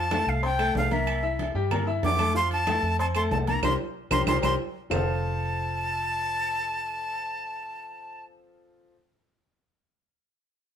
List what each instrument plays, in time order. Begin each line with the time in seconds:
Already playing: fingered electric bass F2, flute A5
0.11 upright piano A3 A4 A5, high conga, low timbale, low agogo, claves
0.27 fingered electric bass C2, flute F5, high conga
0.42 upright piano C4 C5 C6, flute G5, high conga, low agogo
0.58 upright piano A3 A4 A5, high conga, low agogo, claves
0.75 fingered electric bass C2, flute F5, high conga, low timbale
0.91 upright piano A#3 A#4 A#5, flute E5, high conga, low agogo
1.07 high conga, low agogo, claves
1.23 upright piano E4 E5 E6, high conga
1.39 high conga, low timbale, low agogo
1.55 fingered electric bass G2, upright piano G3 G4 G5, high conga
1.71 upright piano A#3 A#4 A#5, high conga, low conga, low agogo, claves
1.87 upright piano E4 E5 E6, high conga
2.03 fingered electric bass F2, flute D6, high conga, low timbale, low agogo
2.19 upright piano A3 A4 A5, high conga, low agogo, claves
2.35 upright piano F3 F4 F5, flute C6, high conga
2.51 flute A5, high conga, low agogo
2.67 upright piano A3 A4 A5, high conga, low timbale, low agogo, claves
2.83 fingered electric bass F2, high conga
2.99 upright piano C4 C5 C6, flute A5, high conga, low agogo
3.15 upright piano A3 A4 A5, flute C6, high conga, low agogo, claves
3.31 fingered electric bass C2, flute A5, high conga, low timbale
3.47 upright piano A#3 A#4 A#5, flute A#5, high conga, low agogo
3.63 fingered electric bass C2, upright piano G4 A#4 C5, flute C6, high conga, high timbale, claves
4.11 fingered electric bass C2, upright piano G4 A#4 C5, flute C6, high conga, high timbale, claves
4.27 fingered electric bass C2, upright piano G4 A#4 C5, flute C6, high conga, high timbale, claves
4.42 fingered electric bass C2, upright piano G4 A#4 C5, flute C6, high conga, high timbale, claves
4.90 fingered electric bass F1, upright piano F3 C4 F4 A4 C5 F5, flute A5, low conga, low timbale, claves